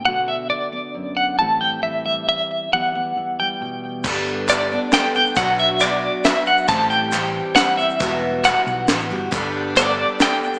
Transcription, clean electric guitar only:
\new Staff \with { instrumentName = "Clean electric guitar" } { \time 3/4 \key g \major \tempo 4 = 136 fis''8 e''8 d''4. fis''8 | a''8 g''8 e''8 e''8 e''4 | fis''4. g''4 r8 | r4 d''4 g''8 g''8 |
fis''8 e''8 d''4 e''8 fis''8 | a''8 g''4. fis''8 e''8~ | e''4 fis''4 r4 | r4 d''4 g''4 | }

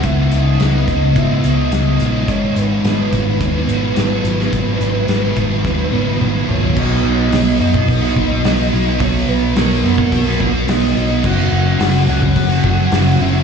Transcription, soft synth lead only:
\new Staff \with { instrumentName = "Soft synth lead" } { \time 4/4 \key b \major \tempo 4 = 107 e''8 dis''4 dis''8 e''8 dis''4. | cis''8 b'4 b'2~ b'8~ | b'2. b'8 cis''8 | dis''4. dis''2~ dis''8 |
cis''8 b'8 ais'4. r8 dis''4 | fis''4. fis''2 e''8 | }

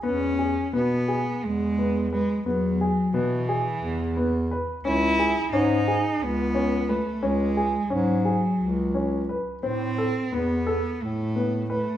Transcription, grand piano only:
\new Staff \with { instrumentName = "Grand piano" } { \time 7/8 \key e \major \tempo 4 = 88 b8 gis'8 b8 gis'4 b8 b'8 | b8 gis'8 b8 gis'4 b8 b'8 | cis'8 gis'8 cis'8 gis'4 cis'8 b'8 | cis'8 gis'8 cis'8 gis'4 cis'8 b'8 |
c'8 a'8 b8 a'4 b8 b'8 | }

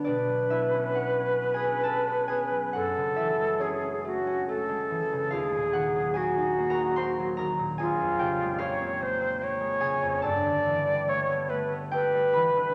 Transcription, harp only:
<<
  \new Staff \with { instrumentName = "Harp" } { \time 3/4 \key fis \minor \tempo 4 = 71 <d' d''>8 <e' e''>8 \tuplet 3/2 { <fis' fis''>4 <gis' gis''>8 } <a' a''>8 <gis' gis''>8 | <fis' fis''>8 <e' e''>8 <cis' cis''>2 | <eis' eis''>8 <fis' fis''>8 \tuplet 3/2 { <gis' gis''>4 <ais' ais''>8 } <c'' c'''>8 <ais' ais''>8 | <gis' gis''>8 <g' g''>8 <eis' eis''>4. <gis' gis''>8 |
<a' a''>2 <g' g''>8 <b' b''>8 | }
  \new Staff \with { instrumentName = "Harp" } { \clef bass \time 3/4 \key fis \minor <b, b b'>16 fis16 b16 cis'16 b16 cis'16 b16 cis'16 b16 cis'16 b16 fis16 | fis,16 cis16 e16 gis16 a16 cis'16 a16 cis'16 a16 gis16 e16 cis16 | dis,16 ais,16 dis16 fis16 ais16 dis'16 ais16 dis'16 ais16 fis16 dis16 ais,16 | ais,,16 eis,16 cis16 gis16 ais16 bis16 ais16 bis16 ais16 gis16 cis16 eis,16 |
g,16 d16 e16 g16 a16 b16 a16 b16 a16 g16 e16 d16 | }
>>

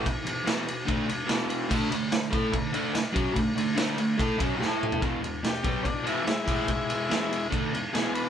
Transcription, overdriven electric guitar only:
\new Staff \with { instrumentName = "Overdriven electric guitar" } { \clef bass \time 4/4 \key e \mixolydian \tempo 4 = 145 <e, b,>8 <e, b,>8 <e, b, e>8 <e, b,>8 <d a d'>8 <e, b,>8 <e, b, e>4 | <d a d'>8 <d a>8 <d a>8 <a e' a'>8 <d a>8 <d a d'>8 r8 <fis cis' fis'>8 | <d a>8 <d a>8 <d a d'>8 <d a>8 <a e' a'>8 <fis cis' fis'>8 <a e' a'>4 | <e, b, e>8 <e, b,>8 <e, b,>8 <b, fis b>8 <e, b,>8 <e, b, e>8 r8 <a, e a>8 |
<e, b,>8 <e, b,>8 <e, b, e>8 <e, b,>8 <d a d'>8 <e, b,>8 <e, b, e>4 | }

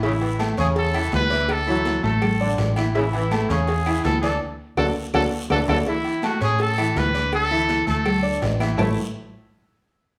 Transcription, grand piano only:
\new Staff \with { instrumentName = "Grand piano" } { \time 4/4 \key a \major \tempo 4 = 164 <e e' e''>4 <a a' a''>8 <cis' cis'' cis'''>4 <e e' e''>4 <d' d'' d'''>8~ | <d' d'' d'''>8 <e e' e''>4 <a a' a''>4 <d' d'' d'''>4 <e e' e''>8 | <e e' e''>4 <a a' a''>8 <cis' cis'' cis'''>4 <e e' e''>4 <d' d'' d'''>8 | r4 <fis' a' d''>8 r8 <fis' a' d''>8 r8 <fis' a' d''>8 <fis' a' d''>8 |
<e e' e''>4 <a a' a''>8 <cis' cis'' cis'''>4 <e e' e''>4 <d' d'' d'''>8~ | <d' d'' d'''>8 <e e' e''>4 <a a' a''>4 <d' d'' d'''>4 <e e' e''>8 | <a e' a' cis'' e'' a''>8 r2. r8 | }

